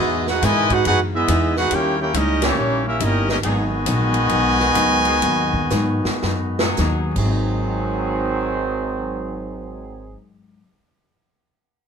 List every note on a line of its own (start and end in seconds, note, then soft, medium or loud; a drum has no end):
0.00 0.41 E2 medium
0.00 0.29 E3 medium
0.00 0.24 G#3 medium
0.00 0.29 G#3 medium
0.00 0.24 B3 medium
0.00 0.25 B3 loud
0.00 0.30 B3 medium
0.00 0.30 D#4 medium
0.00 0.26 E4 loud
0.00 0.24 F#4 medium
0.00 0.25 G#4 medium
0.00 0.25 D#5 loud
0.27 0.44 D#4 medium
0.27 0.43 F#4 medium
0.27 0.44 G#4 medium
0.27 0.43 B4 medium
0.27 0.44 F#5 loud
0.27 snare medium
0.42 0.84 G#2 loud
0.42 0.71 B2 loud
0.42 0.70 D#3 loud
0.42 0.72 E3 medium
0.42 0.71 G#3 medium
0.42 0.72 G#3 medium
0.42 0.73 B3 medium
0.42 0.73 D#4 medium
0.42 0.71 E4 loud
0.42 0.71 B4 loud
0.42 0.71 D#5 loud
0.42 0.71 G#5 loud
0.42 snare soft
0.42 hi-hat pedal medium
0.42 ride medium
0.70 0.86 D#4 medium
0.70 0.85 F#4 medium
0.70 0.86 G#4 medium
0.70 0.86 B4 medium
0.70 0.86 F#5 loud
0.70 kick medium
0.70 ride medium
0.85 1.28 F#2 medium
0.85 1.15 E3 medium
0.85 1.15 G#3 medium
0.85 1.16 B3 medium
0.85 0.99 D#4 loud
0.85 1.17 D#4 medium
0.85 0.99 F#4 medium
0.85 0.99 G#4 loud
0.85 0.99 B4 loud
0.85 0.99 F#5 loud
0.85 ride medium
1.13 1.53 G#3 medium
1.13 1.53 B3 medium
1.13 1.54 B3 medium
1.13 1.54 E4 medium
1.13 1.54 G#4 medium
1.13 1.54 D#5 medium
1.13 1.54 E5 loud
1.27 1.70 E2 loud
1.27 1.57 E3 medium
1.27 1.58 G#3 medium
1.27 1.58 B3 medium
1.27 1.59 D#4 medium
1.27 hi-hat pedal medium
1.27 ride medium
1.56 1.72 D#4 medium
1.56 1.71 F#4 medium
1.56 1.71 G#4 medium
1.56 1.71 B4 medium
1.56 1.72 F#5 loud
1.56 snare medium
1.71 2.13 D#2 medium
1.71 2.01 D#3 soft
1.71 2.02 G3 medium
1.71 1.98 A#3 loud
1.71 1.98 C#4 loud
1.71 2.02 C#4 medium
1.71 2.00 E4 loud
1.71 1.98 G4 loud
1.71 2.00 A#4 loud
1.71 2.00 C#5 loud
1.71 2.00 G5 loud
1.71 ride medium
1.75 2.03 E4 medium
1.99 2.13 A#3 medium
1.99 2.13 C#4 medium
1.99 2.15 E4 medium
1.99 2.13 G4 medium
1.99 2.15 A#4 medium
1.99 2.15 C#5 medium
1.99 2.15 G5 loud
2.14 2.56 C#2 loud
2.14 2.44 D#3 medium
2.14 2.41 G3 medium
2.14 2.44 G3 medium
2.14 2.41 A#3 medium
2.14 2.45 C#4 medium
2.14 2.44 C#4 medium
2.14 2.42 D#4 medium
2.14 2.45 E4 medium
2.14 2.43 G4 medium
2.14 2.43 A#4 medium
2.14 2.43 D#5 loud
2.14 hi-hat pedal medium
2.14 ride medium
2.42 2.53 E3 loud
2.42 2.86 G3 medium
2.42 2.84 A#3 medium
2.42 2.87 A#3 medium
2.42 2.84 C#4 medium
2.42 2.53 C#4 loud
2.42 2.53 D#4 medium
2.42 2.87 E4 medium
2.42 2.53 G4 loud
2.42 2.87 G4 loud
2.42 2.87 C#5 loud
2.42 snare loud
2.42 ride medium
2.57 2.99 A#1 medium
2.57 2.87 D#3 medium
2.57 2.88 G3 medium
2.57 2.88 C#4 medium
2.57 2.89 E4 medium
2.85 3.00 A#3 medium
2.85 2.99 C#4 medium
2.85 3.01 C#4 medium
2.85 3.00 E4 medium
2.85 3.01 G4 medium
2.85 3.01 A#4 medium
2.85 3.01 E5 loud
3.00 3.42 G1 loud
3.00 3.29 D#3 medium
3.00 3.30 G3 medium
3.00 3.28 G3 medium
3.00 3.28 A#3 medium
3.00 3.30 C#4 medium
3.00 3.28 D#4 medium
3.00 3.31 E4 medium
3.00 3.30 G4 medium
3.00 3.30 A#4 medium
3.00 3.30 D#5 loud
3.00 hi-hat pedal medium
3.00 ride medium
3.29 3.36 G3 medium
3.29 3.36 A#3 medium
3.29 3.37 C#4 medium
3.29 3.36 D#4 medium
3.29 3.37 G4 medium
3.29 3.37 A#4 medium
3.29 3.37 D#5 loud
3.29 snare medium
3.43 3.85 G#1 loud
3.43 3.73 G#2 soft
3.43 6.74 D#3 loud
3.43 3.63 F#3 medium
3.43 3.74 F#3 medium
3.43 6.75 G#3 loud
3.43 6.75 B3 loud
3.43 3.63 B3 medium
3.43 3.74 B3 medium
3.43 3.63 D#4 medium
3.43 3.75 D#4 medium
3.43 6.75 F#4 loud
3.43 3.63 G#4 loud
3.43 6.75 B4 loud
3.43 6.75 D#5 loud
3.43 6.75 G#5 loud
3.43 ride medium
3.86 4.29 A#1 loud
3.86 4.16 G#2 medium
3.86 4.17 F#3 medium
3.86 4.17 B3 medium
3.86 4.18 D#4 medium
3.86 hi-hat pedal medium
3.86 ride medium
4.14 ride medium
4.29 4.75 B1 medium
4.29 4.61 G#2 medium
4.29 4.61 F#3 medium
4.29 4.62 B3 medium
4.29 4.62 D#4 medium
4.29 ride medium
4.60 snare medium
4.75 5.21 C#2 loud
4.75 5.07 G#2 medium
4.75 5.08 F#3 medium
4.75 5.08 B3 medium
4.75 5.09 D#4 medium
4.75 hi-hat pedal medium
4.75 ride medium
5.05 5.18 F#3 loud
5.05 5.18 B3 medium
5.05 5.18 D#4 medium
5.05 5.18 G#4 loud
5.05 ride medium
5.22 5.70 D#2 medium
5.22 5.55 G#2 medium
5.22 5.56 F#3 medium
5.22 5.57 B3 medium
5.22 5.57 D#4 medium
5.22 ride medium
5.54 kick medium
5.70 6.06 G#2 medium
5.70 6.02 G#2 loud
5.70 6.06 F#3 medium
5.70 6.07 B3 medium
5.70 6.07 D#4 medium
5.70 snare medium
5.70 hi-hat pedal medium
6.05 muted upright bass stroke soft
6.05 snare medium
6.22 6.76 F#2 medium
6.22 6.60 G#2 medium
6.22 6.61 F#3 medium
6.22 6.61 B3 medium
6.22 6.62 D#4 medium
6.22 snare medium
6.59 7.16 F#3 loud
6.59 7.17 B3 medium
6.59 7.16 D#4 loud
6.59 7.16 G#4 loud
6.59 snare loud
6.77 7.15 D#2 loud
6.77 7.10 G#2 medium
6.77 7.16 F#3 medium
6.77 7.17 B3 medium
6.77 7.17 D#4 medium
6.77 snare medium
6.77 hi-hat pedal medium
7.11 10.61 G#2 medium
7.15 10.14 G#1 loud
7.15 10.14 G#2 loud
7.15 10.14 D#3 loud
7.15 10.14 F#3 loud
7.15 10.20 F#3 medium
7.15 10.69 F#3 medium
7.15 10.14 C4 loud
7.15 10.20 C4 medium
7.15 10.20 D#4 medium
7.15 10.20 G#4 loud
7.15 kick medium
7.15 crash medium
7.25 10.75 C4 medium
7.31 10.81 D#4 medium